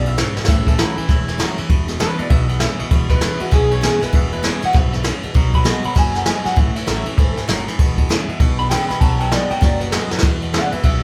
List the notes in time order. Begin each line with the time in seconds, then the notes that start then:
Already playing: B1 F#2
0.06 E2 B2 E5, ride
0.18 E2 G#2 C#3, snare, ride
0.37 E2 B2, muted fretless electric bass stroke, snare
0.45 A2, kick, snare
0.49 A1 E3 E5, ride
0.67 A2 E3 A4, kick, snare, ride
0.78 A2 E3 F#3 A3 C#4 E4, snare, ride
0.97 A2 E3, muted fretless electric bass stroke, ride
1.09 E1 E2 A2 E3, kick, snare, ride
1.28 A2 E3, snare, ride
1.38 A2 E3 F#3 A3 C#4 E4, snare, ride
1.58 A2 E3 C#4 E4, muted fretless electric bass stroke, ride
1.69 E1 E2 B2, kick, ride
1.88 E2 B2, snare, ride
1.99 E2 C#3 E3 G#3 B3 E4 B4, snare, ride
2.18 E2 B2 B3 E4 D5, muted fretless electric bass stroke, ride
2.30 B1 E2 B2 E5, kick, ride
2.49 E2 B2, ride
2.60 E2 C#3 E3 G#3 B3 E4 E5, snare, ride
2.79 E2 B2 B3 E4, muted fretless electric bass stroke, ride
2.91 E1 E2 B2, kick, ride
3.09 E2 B2 B4, kick, snare, ride
3.21 E2 C#3 E3 G#3 B3 E4, snare, ride
3.39 E2 B2 B3 E4 F#4, muted fretless electric bass stroke, ride
3.51 B1 E2 B2 G#4, kick, snare, ride
3.70 E2 B2 C#5, ride
3.81 E2 C#3 E3 G#3 B3 E4 G#4, snare, ride
4.01 E2 B2 B3 E4 B4, muted fretless electric bass stroke, snare, ride
4.13 E1 E2 B2 E5, kick, ride
4.32 E2 B2 B4, ride
4.42 E2 C#3 E3 G#3 B3 E4 C#5, snare, ride
4.61 E2 B2 B3 E4, muted fretless electric bass stroke, ride
4.65 F#5
4.73 B1 E2 G#2 B2 E5, kick, snare, ride
4.93 E2 B2, snare, ride
5.04 E2 A2 C#3, snare, ride
5.23 E2 B2, muted fretless electric bass stroke, ride
5.34 B1 B2 F#3, kick, ride
5.54 B2 F#3 B5, kick, ride
5.64 B2 F#3 G#3 B3 D#4 F#4, snare, ride
5.83 B2 F#3 D#4 F#4 B5, muted fretless electric bass stroke, ride
5.95 F#1 F#2 B2 F#3 G#5, kick, snare, ride
6.15 B2 F#3 F#5, snare, ride
6.26 B2 F#3 G#3 B3 D#4 F#4 G#5, snare, ride
6.45 B2 F#3 D#4 F#4 F#5, muted fretless electric bass stroke, snare, ride
6.56 A1 A2 E3 E5, kick, ride
6.75 A2 E3 C#5, muted fretless electric bass stroke, snare, ride
6.87 A1 A2 E3 F#3 A3 C#4 E4 A4, snare, ride
7.06 A2 E3 C#4 E4, muted fretless electric bass stroke, ride
7.18 G#1 G#2 A2 E3, kick, ride
7.36 A2 E3, muted fretless electric bass stroke, snare, ride
7.48 F#1 F#2 A2 F#3, snare, ride
7.67 A2 E3, muted fretless electric bass stroke, snare, ride
7.79 E1 E2 B2, kick, ride
7.98 E2 B2, kick, ride
8.09 E2 C#3 E3 G#3 B3 E4, snare, ride
8.28 E2 B2, muted fretless electric bass stroke, ride
8.40 B1 E2 B2, kick, ride
8.59 E2 B2 B5, ride
8.70 E2 C#3 E3 G#3 B3 E4 G5, snare, ride
8.89 E2 B2 B3 E4 B5, muted fretless electric bass stroke, snare, ride
9.00 B1 B2 F#3 A5, kick, ride
9.19 B2 F#3 G5, ride
9.31 B2 F#3 G#3 B3 D#4 F#4 D5, snare, ride
9.50 B2 F#3 D#4 F#4 G5, muted fretless electric bass stroke, ride
9.61 F#1 F#2 B2 F#3 D5, kick, snare, ride
9.80 B2 F#3 B4, ride
9.92 B2 F#3 G#3 B3 D#4 F#4 A4, snare, ride
10.11 B2 F#3 D#4 F#4 B4, muted fretless electric bass stroke, snare
10.19 snare
10.22 E2 B2, kick, snare, ride
10.42 E2 B2, ride
10.53 E2 C#3 E3 G#3 B3 E4 D5 F#5, snare, ride
10.71 E2 B2 B3 E4 B4 E5, muted fretless electric bass stroke, ride
10.83 B1 E2 F#2 B2 E5, kick, ride